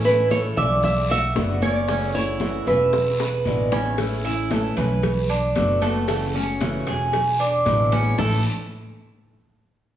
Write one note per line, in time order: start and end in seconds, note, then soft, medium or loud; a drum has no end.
0.00 0.50 A1 medium
0.04 0.30 A3 soft
0.04 0.30 C#4 soft
0.04 0.30 E4 medium
0.04 0.32 B4 medium
0.04 high conga soft
0.30 0.56 E3 medium
0.30 0.56 A3 medium
0.30 0.56 C#4 medium
0.30 0.55 E4 medium
0.30 0.56 A4 medium
0.30 0.38 C#5 loud
0.30 high bongo medium
0.30 high conga medium
0.30 short guiro medium
0.57 1.32 B1 loud
0.57 0.83 A3 soft
0.57 0.83 C#4 soft
0.57 0.82 E4 soft
0.57 1.08 D5 medium
0.57 0.83 E5 loud
0.57 high bongo soft
0.57 high conga soft
0.57 low conga medium
0.57 short guiro medium
0.83 1.10 E5 loud
0.83 muted steel-string acoustic guitar stroke medium
0.83 high bongo medium
0.83 high conga soft
0.83 low conga medium
0.83 long guiro medium
1.10 1.60 F#4 medium
1.10 1.59 E5 loud
1.10 high bongo soft
1.10 high conga soft
1.35 2.60 F#1 medium
1.35 1.60 B2 medium
1.35 1.61 D3 medium
1.35 1.61 A3 medium
1.35 1.61 B3 medium
1.35 1.60 F#4 medium
1.35 high bongo medium
1.35 low bongo medium
1.35 high conga medium
1.35 short guiro medium
1.61 1.88 A3 soft
1.61 1.87 B3 soft
1.61 1.87 C#4 medium
1.61 1.87 F#4 soft
1.61 2.01 D5 loud
1.61 high bongo soft
1.61 high conga medium
1.61 short guiro medium
1.88 2.13 C#3 medium
1.88 2.13 E3 medium
1.88 2.14 A3 medium
1.88 2.14 C#4 medium
1.88 2.13 F#4 medium
1.88 high bongo medium
1.88 high conga soft
1.88 long guiro medium
2.01 2.14 C#5 loud
2.14 2.40 A3 soft
2.14 2.40 C#4 medium
2.14 2.65 E4 medium
2.14 2.40 F#4 soft
2.14 2.63 C#5 medium
2.14 high bongo soft
2.14 high conga soft
2.40 2.65 C#3 medium
2.40 2.66 E3 medium
2.40 2.66 A3 medium
2.40 2.66 C#4 medium
2.40 2.66 F#4 medium
2.40 high bongo medium
2.40 high conga medium
2.40 short guiro medium
2.66 3.42 E1 medium
2.66 2.93 A3 soft
2.66 2.93 C#4 soft
2.66 2.92 F#4 soft
2.66 3.42 B4 medium
2.66 3.18 E5 medium
2.66 high conga soft
2.66 short guiro medium
2.93 muted steel-string acoustic guitar stroke medium
2.93 high bongo medium
2.93 high conga soft
2.93 long guiro medium
3.20 3.71 B4 medium
3.20 high bongo medium
3.20 high conga soft
3.45 4.70 A1 medium
3.45 3.71 B2 medium
3.45 3.71 D3 medium
3.45 3.71 G#3 medium
3.45 3.71 B3 medium
3.45 3.70 E4 medium
3.45 high conga medium
3.45 short guiro medium
3.71 3.98 G#3 soft
3.71 3.97 B3 soft
3.71 3.98 C#4 medium
3.71 3.97 E4 medium
3.71 low bongo medium
3.71 high conga medium
3.71 short guiro medium
3.98 4.23 E3 medium
3.98 4.24 A3 medium
3.98 4.24 C#4 medium
3.98 4.23 E4 medium
3.98 cowbell loud
3.98 high conga soft
3.98 long guiro medium
4.24 4.49 A3 soft
4.24 4.50 C#4 soft
4.24 4.49 E4 medium
4.24 4.50 E4 medium
4.24 high conga soft
4.49 4.75 E3 medium
4.49 4.76 A3 medium
4.49 4.76 C#4 medium
4.49 4.75 E4 medium
4.49 4.76 A4 medium
4.49 cowbell medium
4.49 high conga medium
4.49 short guiro medium
4.76 5.52 B1 medium
4.76 5.02 A3 soft
4.76 5.02 C#4 soft
4.76 5.02 E4 soft
4.76 5.28 B4 medium
4.76 cowbell medium
4.76 high conga soft
4.76 low conga medium
4.76 short guiro medium
5.02 muted steel-string acoustic guitar stroke medium
5.02 cowbell medium
5.02 high conga soft
5.02 low conga medium
5.02 long guiro medium
5.29 5.80 D4 medium
5.29 high conga soft
5.55 6.80 F#1 medium
5.55 5.80 B2 medium
5.55 5.81 D3 medium
5.55 5.81 A3 medium
5.55 5.81 B3 medium
5.55 5.80 F#4 medium
5.55 cowbell medium
5.55 high conga medium
5.55 short guiro medium
5.81 6.07 A3 medium
5.81 6.08 A3 soft
5.81 6.07 B3 soft
5.81 6.07 F#4 medium
5.81 cowbell medium
5.81 high conga medium
5.81 short guiro medium
6.07 6.33 C#3 medium
6.07 6.33 E3 medium
6.07 6.34 A3 medium
6.07 6.34 C#4 medium
6.07 6.33 F#4 medium
6.07 cowbell loud
6.07 high conga soft
6.07 long guiro medium
6.34 6.61 A3 soft
6.34 6.86 C#4 medium
6.34 6.60 C#4 soft
6.34 6.59 F#4 soft
6.34 high conga soft
6.60 6.86 C#3 medium
6.60 6.86 E3 medium
6.60 6.86 A3 medium
6.60 6.86 C#4 medium
6.60 6.86 F#4 medium
6.60 cowbell medium
6.60 high conga medium
6.60 short guiro medium
6.87 7.62 E1 medium
6.87 7.13 A3 soft
6.87 7.13 C#4 soft
6.87 7.12 F#4 soft
6.87 7.38 G#4 medium
6.87 cowbell medium
6.87 high conga soft
6.87 short guiro medium
7.13 muted steel-string acoustic guitar stroke medium
7.13 cowbell loud
7.13 high conga soft
7.13 long guiro medium
7.40 7.91 D4 medium
7.40 high conga soft
7.65 8.12 A1 medium
7.65 7.91 B2 medium
7.65 7.91 D3 medium
7.65 7.91 G#3 medium
7.65 7.92 B3 medium
7.65 7.90 E4 medium
7.65 cowbell medium
7.65 high conga medium
7.65 short guiro medium
7.92 8.18 G#3 soft
7.92 8.18 B3 soft
7.92 8.17 C#4 medium
7.92 8.17 E4 medium
7.92 cowbell medium
7.92 high conga medium
7.92 short guiro medium
8.18 8.43 A1 medium
8.18 8.39 A2 medium
8.18 8.39 E3 medium
8.18 8.43 A3 medium
8.18 8.39 A3 medium
8.18 8.40 C#4 medium
8.18 8.43 E4 medium
8.18 8.40 E4 medium
8.18 8.43 A4 loud
8.18 low bongo loud
8.18 low conga medium
8.18 long guiro loud